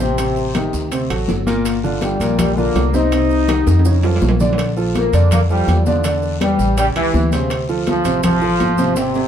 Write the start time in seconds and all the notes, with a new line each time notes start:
Already playing: A1
0.00 C3 C4 C5, high bongo, high conga, short guiro, maracas
0.18 C3 C4 C5, high bongo, high conga, high timbale, long guiro, maracas
0.37 high bongo, high conga, maracas
0.55 D#3 D#4 G4, high bongo, high conga, high timbale, short guiro, maracas
0.73 D2, high conga, short guiro, maracas
0.92 C3 C4 C5, high bongo, high conga, high timbale, long guiro, maracas
1.10 A1 F#3 F#4 A4, high bongo, high conga, high timbale, maracas
1.28 G1, high bongo, low bongo, high conga, low timbale, short guiro, maracas
1.47 A#2 A#3 A#4, high bongo, high conga, high timbale, short guiro, maracas
1.65 high bongo, high conga, high timbale, long guiro, maracas
1.83 D3 D4 F4, high bongo, high conga, maracas
2.01 G3, high bongo, high conga, high timbale, short guiro, maracas
2.20 A#1 A#2 A#3 A#4, high conga, high timbale, short guiro, maracas
2.39 G3, high bongo, high conga, low conga, high timbale, long guiro, maracas
2.57 D3 A#3 D4 F4, high bongo, high conga, maracas
2.75 C2, high bongo, low bongo, high conga, high timbale, low timbale, short guiro, maracas
2.93 C3 C4 D#4 C5, high bongo, high conga, short guiro, maracas
3.12 C3 C4 C5, high bongo, high conga, high timbale, long guiro, maracas
3.30 high bongo, high conga, maracas
3.48 D#3 D#4 G4, high bongo, high conga, high timbale, short guiro, maracas
3.67 F2, high bongo, high conga, high timbale, short guiro, maracas
3.79 high timbale
3.85 C#3 C#4 C#5, low bongo, high conga, long guiro, maracas
4.03 F3 F4 A4, low bongo, high conga, low timbale, maracas
4.16 low timbale
4.21 A#1, low bongo, high conga, short guiro, maracas
4.29 low timbale
4.40 D3 D4 D5, low bongo, high conga, low timbale, short guiro, maracas
4.53 low timbale
4.58 high bongo, high conga, high timbale, long guiro, maracas
4.77 F3 F4 A4, high bongo, high conga, maracas
4.95 A#3, high bongo, high conga, high timbale, short guiro, maracas
5.13 F2 D3 D4 D5, high conga, high timbale, short guiro, maracas
5.31 A#3, high bongo, high conga, low conga, high timbale, long guiro, maracas
5.50 F3 G3 F4 A4, high bongo, high conga, maracas
5.67 E2, high bongo, low bongo, high conga, high timbale, low timbale, short guiro, maracas
5.86 D3 F3 D4 D5, high bongo, high conga, short guiro, maracas
6.04 D3 D4 D5, high bongo, high conga, high timbale, long guiro, maracas
6.22 high bongo, high conga, maracas
6.41 G3 G4 B4, high bongo, high conga, high timbale, short guiro, maracas
6.59 A1, high conga, short guiro, maracas
6.77 C#3 G3 C#4 C#5, high bongo, high conga, high timbale, long guiro, maracas
6.96 C#2 E3 E4 G4, high bongo, high conga, high timbale, maracas
7.14 D2, high bongo, low bongo, high conga, short guiro, maracas
7.32 C3 C#3 C4 C5, high bongo, high conga, high timbale, short guiro, maracas
7.50 high bongo, high conga, high timbale, long guiro, maracas
7.69 F3 F4 A4, high bongo, high conga, maracas
7.87 F3, high bongo, high conga, high timbale, short guiro, maracas
8.05 A1 C3 C4 C5, high conga, high timbale, short guiro, maracas
8.23 F3, high bongo, high conga, low conga, high timbale, long guiro, maracas
8.41 F3 F4 A4, high bongo, maracas
8.60 G#1, high bongo, low bongo, high conga, high timbale, short guiro, maracas
8.78 C3 C4 C5, high bongo, high conga, short guiro, maracas
8.96 C3 C4 C5, high bongo, high conga, high timbale, long guiro, maracas
9.14 high bongo, high conga, high timbale, maracas